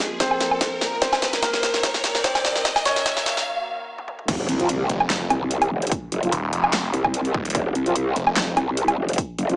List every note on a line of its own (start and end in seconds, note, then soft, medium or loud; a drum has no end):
0.00 1.00 A#2 medium
0.00 1.00 C#3 medium
0.00 0.98 F3 medium
0.00 0.12 G#3 medium
0.00 0.12 G#4 medium
0.00 2.62 A#4 medium
0.00 riser medium
0.20 0.94 C4 medium
0.20 0.94 C5 medium
0.20 kick loud
0.20 snare medium
0.20 closed hi-hat medium
0.31 low woodblock medium
0.41 snare medium
0.41 closed hi-hat soft
0.51 low woodblock medium
0.61 kick loud
0.61 snare medium
0.61 closed hi-hat medium
0.81 snare medium
1.02 2.63 G#2 medium
1.02 2.63 D#3 medium
1.02 1.26 C4 medium
1.02 2.63 C4 medium
1.02 1.26 C5 loud
1.02 kick loud
1.02 snare medium
1.02 closed hi-hat medium
1.13 snare medium
1.13 low woodblock medium
1.22 snare medium
1.22 closed hi-hat medium
1.33 snare medium
1.33 closed hi-hat medium
1.43 2.17 A#3 medium
1.43 2.17 A#4 loud
1.43 kick loud
1.43 snare medium
1.43 closed hi-hat medium
1.53 snare medium
1.63 snare medium
1.63 closed hi-hat medium
1.74 snare medium
1.83 kick loud
1.83 snare medium
1.83 closed hi-hat medium
1.94 snare medium
2.04 snare loud
2.04 closed hi-hat medium
2.15 snare medium
2.24 2.78 C4 medium
2.24 2.78 C5 medium
2.24 kick loud
2.24 snare loud
2.24 closed hi-hat medium
2.35 snare medium
2.35 low woodblock medium
2.45 snare loud
2.55 snare medium
2.65 4.27 D#2 medium
2.65 4.27 D#3 medium
2.65 4.27 A#3 medium
2.65 4.27 F#4 loud
2.65 kick loud
2.65 snare loud
2.65 closed hi-hat medium
2.76 snare medium
2.76 low woodblock medium
2.85 3.39 C#4 medium
2.85 3.39 C#5 loud
2.85 snare loud
2.85 closed hi-hat medium
2.96 snare medium
2.96 closed hi-hat medium
3.06 kick loud
3.06 snare loud
3.06 closed hi-hat medium
3.17 snare medium
3.26 snare loud
3.26 closed hi-hat medium
3.37 snare medium
3.98 high tom medium
4.08 mid tom medium
4.19 mid tom medium
4.28 4.47 F1 medium
4.28 kick loud
4.28 closed hi-hat medium
4.28 crash loud
4.28 impact medium
4.49 4.88 C2 medium
4.49 closed hi-hat medium
4.60 4.66 F3 medium
4.60 4.66 C4 medium
4.60 4.66 F4 medium
4.60 closed hi-hat soft
4.69 closed hi-hat medium
4.89 5.29 F1 loud
4.89 closed hi-hat medium
5.00 low woodblock medium
5.10 snare loud
5.10 clap medium
5.10 closed hi-hat medium
5.30 5.70 C2 loud
5.30 closed hi-hat medium
5.30 low woodblock medium
5.51 closed hi-hat medium
5.62 closed hi-hat soft
5.62 low woodblock medium
5.71 5.90 F1 loud
5.82 closed hi-hat soft
5.87 closed hi-hat medium
5.92 kick loud
5.92 closed hi-hat medium
6.12 6.31 F#1 loud
6.12 closed hi-hat medium
6.23 6.29 F3 medium
6.23 6.29 C4 medium
6.23 6.29 F4 medium
6.23 closed hi-hat soft
6.32 6.51 D#1 medium
6.32 closed hi-hat medium
6.53 6.92 F1 loud
6.53 closed hi-hat medium
6.64 low woodblock medium
6.73 snare loud
6.73 clap medium
6.73 closed hi-hat medium
6.94 7.33 C2 loud
6.94 closed hi-hat medium
7.04 kick medium
7.04 low woodblock medium
7.14 closed hi-hat medium
7.25 closed hi-hat soft
7.34 7.53 D#1 loud
7.34 kick loud
7.45 closed hi-hat soft
7.50 closed hi-hat medium
7.55 7.74 F1 loud
7.55 kick loud
7.55 closed hi-hat medium
7.75 8.15 C2 medium
7.75 closed hi-hat medium
7.86 7.92 F3 medium
7.86 7.92 C4 medium
7.86 7.92 F4 medium
7.86 closed hi-hat soft
7.96 closed hi-hat medium
8.16 8.55 F1 loud
8.16 closed hi-hat medium
8.27 low woodblock medium
8.36 snare loud
8.36 clap medium
8.36 closed hi-hat medium
8.57 8.96 C2 medium
8.57 closed hi-hat soft
8.57 low woodblock medium
8.77 closed hi-hat medium
8.88 closed hi-hat soft
8.88 low woodblock medium
8.98 9.17 F1 loud
9.09 closed hi-hat soft
9.13 closed hi-hat medium
9.18 kick loud
9.18 closed hi-hat medium
9.38 9.56 F#1 medium
9.38 closed hi-hat medium
9.49 9.56 F3 medium
9.49 9.56 C4 medium
9.49 9.56 F4 medium
9.49 closed hi-hat soft